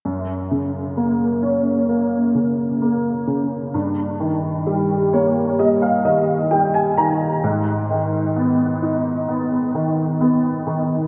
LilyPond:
<<
  \new Staff \with { instrumentName = "Grand piano" } { \time 4/4 \key fis \major \tempo 4 = 65 r1 | r4. cis''8 dis''16 eis''16 dis''8 g''16 gis''16 ais''8 | r1 | }
  \new Staff \with { instrumentName = "Grand piano" } { \clef bass \time 4/4 \key fis \major fis,8 cis8 ais8 cis'8 ais8 cis8 ais8 cis8 | g,8 dis8 g8 ais8 g8 dis8 g8 dis8 | gis,8 dis8 b8 dis'8 b8 dis8 b8 dis8 | }
>>